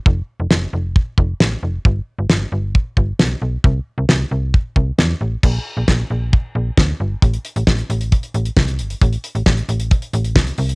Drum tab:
CC |----------------|----------------|----------------|x---------------|
HH |----------------|----------------|----------------|----------------|
SD |----o-------o---|----o-------o---|----o-------o---|----o-------o---|
BD |o-------o-o-----|o-------o-o-----|o-------o-o-----|o---o---o---o---|

CC |----------------|----------------|
HH |xxxx-xxxxxxx-xxx|xxxx-xxxxxxx-xox|
SD |----o-------o---|----o-------o---|
BD |o---o---o---o---|o---o---o---o---|